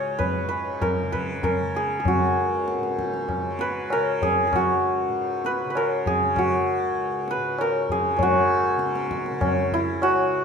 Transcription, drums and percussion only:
0.20 tabla tin medium
0.20 tabla ge medium
0.51 tabla na medium
0.81 tabla na medium
0.81 tabla ge medium
1.13 tabla ge soft
1.43 tabla na medium
1.43 tabla ge medium
1.75 tabla te medium
2.05 tabla tin loud
2.05 tabla ge medium
2.68 tabla te medium
2.83 tabla te medium
2.99 tabla ke medium
3.14 tabla te medium
3.29 tabla na medium
3.29 tabla ge medium
3.59 tabla te medium
3.90 tabla na medium
4.22 tabla tin medium
4.22 tabla ge medium
4.53 tabla na medium
4.53 tabla ge medium
5.45 tabla te medium
5.75 tabla na medium
6.06 tabla tin medium
6.06 tabla ge medium
6.36 tabla na medium
6.36 tabla ge medium
7.28 tabla te medium
7.58 tabla na medium
7.89 tabla tin medium
7.89 tabla ge medium
8.19 tabla tin loud
8.19 tabla ge medium
8.79 tabla te medium
8.96 tabla te medium
9.11 tabla ke medium
9.26 tabla te medium
9.41 tabla na medium
9.41 tabla ge medium
9.71 tabla ge medium
10.02 tabla na medium

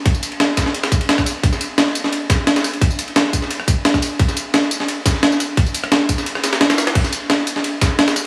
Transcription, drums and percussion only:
0.06 kick loud
0.06 closed hi-hat medium
0.06 ride medium
0.14 tambourine soft
0.23 closed hi-hat medium
0.23 ride medium
0.23 tambourine medium
0.32 ride soft
0.40 snare loud
0.40 closed hi-hat medium
0.40 ride medium
0.57 kick medium
0.57 snare loud
0.57 closed hi-hat medium
0.57 ride medium
0.57 tambourine medium
0.66 snare soft
0.74 closed hi-hat medium
0.74 ride medium
0.83 cross-stick soft
0.83 snare loud
0.83 ride medium
0.92 kick loud
0.92 closed hi-hat medium
0.92 tambourine medium
1.01 ride medium
1.09 snare loud
1.09 closed hi-hat medium
1.09 ride medium
1.18 kick medium
1.18 cross-stick soft
1.18 snare soft
1.18 tambourine soft
1.26 open hi-hat medium
1.26 ride medium
1.26 tambourine medium
1.43 kick loud
1.43 closed hi-hat medium
1.43 ride medium
1.53 snare soft
1.53 tambourine soft
1.61 closed hi-hat medium
1.61 ride medium
1.61 tambourine medium
1.78 snare loud
1.78 closed hi-hat medium
1.78 ride medium
1.87 snare soft
1.95 closed hi-hat medium
1.95 ride medium
1.95 tambourine medium
2.04 snare soft
2.04 snare medium
2.13 closed hi-hat medium
2.13 ride medium
2.30 kick loud
2.30 snare loud
2.30 closed hi-hat medium
2.30 ride medium
2.30 tambourine medium
2.47 snare loud
2.47 closed hi-hat medium
2.47 ride medium
2.56 snare loud
2.56 ride medium
2.56 tambourine soft
2.64 cross-stick soft
2.64 open hi-hat medium
2.64 tambourine medium
2.74 ride medium
2.81 kick loud
2.81 closed hi-hat medium
2.81 ride medium
2.91 tambourine soft
2.99 closed hi-hat medium
2.99 ride medium
2.99 tambourine medium
3.08 ride soft
3.16 snare loud
3.16 closed hi-hat medium
3.16 ride medium
3.33 kick medium
3.33 closed hi-hat medium
3.33 ride medium
3.33 tambourine medium
3.42 snare soft
3.51 closed hi-hat medium
3.51 ride loud
3.60 cross-stick soft
3.68 kick loud
3.68 closed hi-hat medium
3.68 ride medium
3.68 tambourine medium
3.85 snare loud
3.85 closed hi-hat medium
3.85 ride medium
3.94 kick medium
3.94 cross-stick soft
3.94 snare soft
3.94 tambourine soft
4.02 open hi-hat medium
4.02 ride medium
4.02 tambourine medium
4.19 kick loud
4.19 closed hi-hat medium
4.19 ride medium
4.28 snare soft
4.28 tambourine soft
4.37 closed hi-hat medium
4.37 ride medium
4.37 tambourine medium
4.54 snare loud
4.54 closed hi-hat medium
4.54 ride medium
4.63 snare soft
4.71 closed hi-hat loud
4.71 ride medium
4.71 tambourine medium
4.80 snare medium
4.80 snare soft
4.88 closed hi-hat medium
4.88 ride loud
5.06 kick loud
5.06 snare loud
5.06 closed hi-hat loud
5.06 ride medium
5.06 tambourine medium
5.15 snare soft
5.23 snare loud
5.23 closed hi-hat medium
5.23 ride medium
5.32 snare soft
5.32 tambourine soft
5.40 cross-stick soft
5.40 open hi-hat medium
5.40 ride medium
5.40 tambourine medium
5.57 kick loud
5.57 closed hi-hat medium
5.57 ride medium
5.66 tambourine soft
5.74 closed hi-hat medium
5.74 ride medium
5.74 tambourine medium
5.84 cross-stick medium
5.84 ride soft
5.92 snare loud
5.92 closed hi-hat medium
5.92 ride medium
6.09 kick medium
6.09 closed hi-hat loud
6.09 ride medium
6.09 tambourine medium
6.18 snare medium
6.18 tambourine soft
6.26 closed hi-hat medium
6.26 ride medium
6.35 cross-stick soft
6.35 snare soft
6.44 snare loud
6.44 closed hi-hat loud
6.44 ride medium
6.44 tambourine medium
6.53 snare loud
6.53 ride medium
6.61 snare loud
6.61 closed hi-hat medium
6.61 ride medium
6.70 cross-stick soft
6.70 snare soft
6.70 snare loud
6.70 ride medium
6.70 tambourine soft
6.78 snare loud
6.78 open hi-hat medium
6.78 ride medium
6.78 tambourine medium
6.87 snare loud
6.87 ride medium
6.95 kick loud
6.95 closed hi-hat medium
6.95 crash medium
6.95 ride medium
7.04 snare soft
7.04 tambourine soft
7.13 closed hi-hat medium
7.13 ride medium
7.13 tambourine medium
7.30 snare loud
7.30 closed hi-hat medium
7.30 ride medium
7.39 snare soft
7.47 closed hi-hat loud
7.47 ride medium
7.47 tambourine medium
7.56 snare medium
7.56 snare soft
7.64 closed hi-hat medium
7.64 ride medium
7.81 kick loud
7.81 snare loud
7.81 closed hi-hat loud
7.81 ride medium
7.81 tambourine medium
7.99 snare loud
7.99 closed hi-hat medium
7.99 ride medium
8.08 snare loud
8.08 ride medium
8.08 tambourine soft
8.16 cross-stick soft
8.16 open hi-hat medium
8.16 tambourine medium

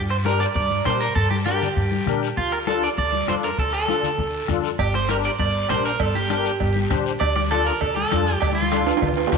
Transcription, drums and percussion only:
0.10 bombo rim medium
0.25 bombo rim medium
0.25 high conga loud
0.25 short guiro medium
0.42 short guiro medium
0.55 bombo low medium
0.55 high conga soft
0.55 long guiro medium
0.70 high conga medium
0.85 bombo rim medium
0.85 high conga medium
0.85 short guiro medium
1.02 short guiro medium
1.16 bombo low medium
1.16 high conga soft
1.16 long guiro medium
1.31 high conga medium
1.46 bombo rim medium
1.46 high conga loud
1.46 short guiro medium
1.62 low conga medium
1.62 short guiro medium
1.77 bombo low medium
1.77 high conga soft
1.77 long guiro medium
1.92 high conga medium
2.06 bombo rim medium
2.06 high conga medium
2.06 low conga medium
2.06 short guiro medium
2.23 short guiro medium
2.37 bombo low medium
2.37 high conga soft
2.37 long guiro medium
2.52 bombo rim medium
2.67 bombo rim medium
2.67 high conga loud
2.67 short guiro medium
2.83 short guiro medium
2.98 bombo low medium
2.98 high conga soft
2.98 long guiro medium
3.13 high conga medium
3.28 bombo rim medium
3.28 high conga medium
3.28 short guiro medium
3.43 short guiro medium
3.58 bombo low medium
3.58 high conga soft
3.58 long guiro medium
3.73 bombo rim medium
3.88 bombo rim medium
3.88 high conga loud
3.88 short guiro medium
4.03 low conga medium
4.03 short guiro medium
4.18 bombo low medium
4.18 high conga soft
4.18 long guiro medium
4.48 bombo low medium
4.48 bombo rim medium
4.48 high conga medium
4.48 low conga medium
4.48 short guiro medium
4.64 short guiro medium
4.79 bombo low medium
4.79 cowbell loud
4.79 high conga soft
4.79 long guiro medium
4.94 bombo rim medium
4.94 high conga medium
5.09 bombo rim medium
5.09 cowbell medium
5.09 high conga loud
5.09 short guiro medium
5.24 short guiro medium
5.39 bombo low medium
5.39 cowbell medium
5.39 high conga soft
5.39 long guiro medium
5.69 bombo rim medium
5.69 cowbell medium
5.69 high conga medium
5.69 short guiro medium
5.85 short guiro medium
6.00 bombo low medium
6.00 cowbell medium
6.00 high conga soft
6.00 long guiro medium
6.15 high conga medium
6.30 bombo rim medium
6.30 cowbell medium
6.30 high conga loud
6.30 short guiro medium
6.45 short guiro medium
6.60 bombo low medium
6.60 cowbell medium
6.60 high conga soft
6.60 long guiro medium
6.76 high conga medium
6.90 bombo low medium
6.90 bombo rim medium
6.90 cowbell medium
6.90 high conga medium
6.90 low conga medium
6.90 short guiro medium
7.06 short guiro medium
7.21 bombo low medium
7.21 cowbell loud
7.21 high conga soft
7.21 long guiro medium
7.36 bombo rim medium
7.36 high conga medium
7.51 bombo rim medium
7.51 cowbell medium
7.51 high conga loud
7.51 short guiro medium
7.66 short guiro medium
7.81 bombo low medium
7.81 cowbell medium
7.81 high conga soft
7.81 long guiro medium
7.97 high conga medium
8.11 bombo low medium
8.11 bombo rim medium
8.11 cowbell medium
8.11 high conga medium
8.11 short guiro medium
8.27 short guiro medium
8.42 bombo low medium
8.42 cowbell loud
8.42 high conga medium
8.42 long guiro medium
8.52 high conga medium
8.62 high conga loud
8.72 bombo rim medium
8.72 cowbell medium
8.72 high conga loud
8.72 short guiro medium
8.82 high conga medium
8.87 high timbale medium
8.87 short guiro medium
8.97 high timbale medium
9.02 bombo low medium
9.02 cowbell medium
9.02 low conga loud
9.02 long guiro medium
9.07 high timbale medium
9.12 low conga medium
9.17 high timbale medium
9.27 low timbale medium
9.32 bombo low medium
9.32 bombo rim medium
9.32 cowbell medium
9.32 low conga medium
9.32 short guiro medium

